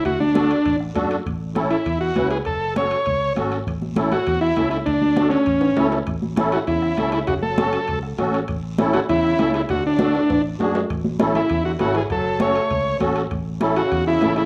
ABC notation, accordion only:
X:1
M:4/4
L:1/8
Q:1/4=199
K:A
V:1 name="Accordion"
z2 [DFA] z3 [DFA] z | z2 [CEA] z3 [CEB] z | z2 [CFA] z3 [CFA] z | z2 [CEA] z3 [CEA] z |
z2 [DFA] z3 [CEA] z | z2 [CEA] z3 [CEA] z | z2 [CFA] z3 [CFA] z | z2 [CEA] z3 [CEA] z |
z2 [DFA] z3 [DFG] z | z2 [CEA] z3 [CEA] z | z2 [CFA] z3 [CFA] z | z2 [CEA] z3 [CEA] z |]